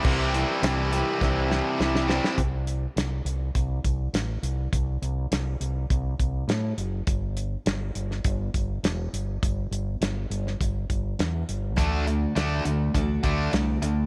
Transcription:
<<
  \new Staff \with { instrumentName = "Twelve-string acoustic guitar" } { \time 4/4 \key c \major \tempo 4 = 102 <c g c' e' g'>8 <c' e' g'>8 <g c' e' g'>8 <c' e' g'>8 <c g c' e' g'>8 <c' e' g'>8 <g c' e' g'>8 <c' e' g'>8 | \key d \mixolydian r1 | r1 | r1 |
r1 | <d e a d' fis' d''>8 <a d' fis' d''>8 <fis' d''>8 <a d' fis' d''>8 <d e a d' fis' d''>8 <a d' fis' d''>8 <a d' fis' d''>8 <a d' fis' d''>8 | }
  \new Staff \with { instrumentName = "Distorted electric guitar" } { \time 4/4 \key c \major <c e g c' e'>2.~ <c e g c' e'>8 <c e g c' e'>8 | \key d \mixolydian r1 | r1 | r1 |
r1 | <d a d'>8 <d a>8 <d a d'>8 <d a>8 <d a>8 <d a d'>8 <d a>8 <d a>8 | }
  \new Staff \with { instrumentName = "Overdriven electric guitar" } { \clef bass \time 4/4 \key c \major c8 g8 c8 g8 c'8 g8 e'8 c'8 | \key d \mixolydian r1 | r1 | r1 |
r1 | r1 | }
  \new Staff \with { instrumentName = "Fingered electric bass" } { \clef bass \time 4/4 \key c \major c,4 c,4 c,4 c,4 | \key d \mixolydian c,4 c,8 c,8 c,8 c,8 a,,8 c,8 | c,8 c,8 c,8 c,8 c,8 c,8 a,8 fis,,8 | g,,4 g,,8 g,,8 g,,8 g,,8 e,,8 g,,8 |
g,,8 g,,8 g,,8 g,,8 g,,8 g,,8 e,8 g,,8 | d,4 d,8 d,8 d,8 d,8 c,8 d,8 | }
  \new DrumStaff \with { instrumentName = "Drums" } \drummode { \time 4/4 <cymc bd>8 hh8 <hh sn>8 hh8 <bd sn>8 sn8 sn16 sn16 sn16 sn16 | <hh bd>8 hh8 <hh sn>8 hh8 <hh bd>8 <hh bd>8 <hh sn>8 hh8 | <hh bd>8 hh8 <hh sn>8 hh8 <hh bd>8 <hh bd>8 <hh sn>8 hh8 | <hh bd>8 hh8 <hh sn>8 hh16 sn16 <hh bd>8 <hh bd>8 <hh sn>8 hh8 |
<hh bd>8 hh8 <hh sn>8 hh16 sn16 <hh bd>8 <hh bd>8 <hh sn>8 hh8 | <hh bd>8 hh8 <hh sn>8 hh8 <hh bd>8 <hh bd>8 <hh sn>8 hh8 | }
>>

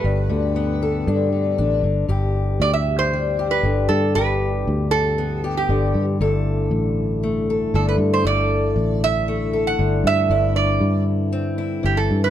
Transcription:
<<
  \new Staff \with { instrumentName = "Resonator guitar played with a steel bar" } { \time 4/4 \key g \major \tempo 4 = 117 b'2.~ b'8 r8 | r4 d''16 e''8 c''4 b'8. a'8 | b'4. a'4~ a'16 g'4 r16 | r2. a'16 b'8 c''16 |
d''4. e''4~ e''16 fis''8. e''8~ | e''8 d''4 r4. g'16 a'8 b'16 | }
  \new Staff \with { instrumentName = "French horn section" } { \time 4/4 \key g \major << { <b, g'>1 | <e g'>1~ | <e g'>1 | <d e'>1~ |
<d e'>1~ | <d e'>1 | } \\ { a1 | b,1~ | b,1 | a1~ |
a1 | c'1 | } >> }
  \new Staff \with { instrumentName = "Steel-string acoustic guitar" } { \time 4/4 \key g \major << { r4 b8 a'8 d'4 d'4 | g'2 g8 g'4. | g'2 b8 g'4. | a'2 a8 a'4. |
a'2 a8 a'4. | e'2 c'8 e'4. | } \\ { g,8 d2 d4 d8 | g,2. d4 | g,2. d4 | g,2. d4 |
g,2. d4 | g,2. e4 | } >> }
  \new Staff \with { instrumentName = "Fingered electric bass" } { \clef bass \time 4/4 \key g \major g,,8 d,4. g,4 a,,8 g,,8 | g,,4 d,2 g,,8 g,8 | g,,4 d,2 g,,8 g,8 | g,,4 a,,2 g,,8 g,8 |
g,,4 a,,2 g,,8 g,8 | g,,4 g,2 g,,8 g,8 | }
>>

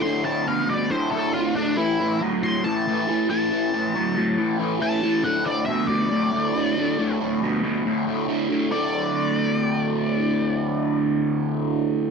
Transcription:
<<
  \new Staff \with { instrumentName = "Lead electric guitar" } { \time 4/4 \key d \mixolydian \tempo 4 = 138 c'''8 a''8 f''8 d''8 c''8 a'8 f'8 d'8 | e'4 r8 c'''8 a''4. a''8~ | a''2~ a''8 r8 a''4 | fis''8 d''8 e''8 d''2~ d''8~ |
d''8 r2. r8 | d''1~ | d''1 | }
  \new Staff \with { instrumentName = "Overdriven electric guitar" } { \clef bass \time 4/4 \key d \mixolydian <d, a,>8 <d, a,>8 <d, b,>8 <d, b,>8 <d, a,>8 <d, a,>8 <d, a,>8 <d, a,>8 | <a, e>8 <a, e>8 <a, fis>8 <a, fis>8 <a, e>8 <a, e>8 <a, e>8 <a, e>8 | <a, e>8 <a, e>8 <a, fis>8 <a, fis>8 <a, e>8 <a, e>8 <a, e>8 <a, e>8 | <d, a,>8 <d, a,>8 <d, b,>8 <d, b,>8 <d, a,>8 <d, a,>8 <d, a,>8 <d, a,>8 |
<d, a,>8 <d, a,>8 <d, b,>8 <d, b,>8 <d, a,>8 <d, a,>8 <d, a,>8 <d, a,>8 | <d, a, d>1~ | <d, a, d>1 | }
>>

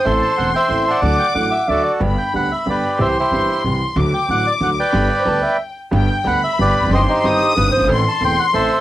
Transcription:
<<
  \new Staff \with { instrumentName = "Violin section" } { \time 3/4 \key g \major \tempo 4 = 184 c'''2. | d'''2~ d'''8 r8 | b''2. | c'''2. |
d'''2. | b''4 a''8 g''4 r8 | g''4 b''2 | c'''4 ees'''2 |
c'''2. | }
  \new Staff \with { instrumentName = "Bandoneon" } { \time 3/4 \key g \major << { e''8 a''8 fis''8 g''4 a''8~ | a''8 g''8 fis''8 e''8 d''8. r16 | r8 g''8 fis''8 e''8 d''4 | e''8 c''4. r4 |
r8 g''8 fis''8 d''8 fis''8 g''8~ | g''2 r4 | r8 g''8 fis''8 e''8 d''4 | ees''8 c''4. r4 |
r8 a''8 g''8 fis''8 e''4 | } \\ { <a' c''>4. <c'' e''>4 <d'' fis''>8~ | <d'' fis''>4 r4 <fis' a'>4 | r2 <g' b'>4 | <g' c''>8 <e' g'>4. r4 |
r2 r8 <b' d''>8~ | <b' d''>2 r4 | r2 <g' b'>4 | <g' c''>8 <ees' g'>4. r4 |
r2 <a' c''>4 | } >> }
  \new Staff \with { instrumentName = "Clarinet" } { \time 3/4 \key g \major c''16 r2 r8. | r4. fis''8 e''8 d''8~ | d''16 r2 r8. | r2. |
r2. | r8 d''16 c''16 b'8 e''8 r4 | r2. | r4. g'8 b'8 c''8~ |
c''16 r2 r8. | }
  \new Staff \with { instrumentName = "Grand piano" } { \clef bass \time 3/4 \key g \major <a,, a, e a c' a'>8 r8 <e,, e, e a c' a'>8 r8 <a,, a, e a c' a'>8 r8 | <d, d fis a d' a'>8 r8 <a,, a, fis a d' a'>8 r8 <d, d fis a d' a'>8 r8 | <g,, g, d g b g'>8 r8 <d, d g b g'>8 r8 <g,, g, d g b g'>8 r8 | <c, c e g c' g'>8 r8 <g,, g, e g c' g'>8 r8 <c, c e g c' g'>8 r8 |
<d, d fis a fis'>8 r8 <a,, a, d fis a fis'>8 r8 <d, d fis a fis'>8 r8 | <g,, g, d g b g'>8 r8 <d, d g b g'>8 r4. | <g,, g, d g b g'>8 r8 <d, d g b g'>8 r8 <g,, g, d g b g'>8 r32 e,32 f,32 fis,32 | <g,, g, ees g c' g'>8 r8 <g,, g, ees g c' g'>8 r8 <g,, g, ees g c' g'>8 r32 fis,,32 g,,32 aes,,32 |
<a,, a, e a c' a'>8 r8 <e,, e, e a c' a'>8 r8 <a,, a, e a c' a'>8 r8 | }
  \new Staff \with { instrumentName = "Upright bass" } { \clef bass \time 3/4 \key g \major a,,16. r8 r32 e,,16. r8 r32 a,,16. r8 r32 | d,16. r8 r32 a,,16. r8 r32 d,16. r8 r32 | g,,16. r8 r32 d,16. r8 r32 g,,16. r8 r32 | c,16. r8 r32 g,,16. r8 r32 c,16. r8 r32 |
d,16. r8 r32 a,,16. r8 r32 d,16. r8 r32 | g,,16. r8 r32 d,16. r4. r32 | g,,16. r8 r32 d,16. r8 r32 g,,16. r16 e,,32 f,,32 fis,,32 | g,,16. r8 r32 g,,16. r8 r32 g,,16. r16 fis,,32 g,,32 aes,,32 |
a,,16. r8 r32 e,,16. r8 r32 a,,16. r8 r32 | }
>>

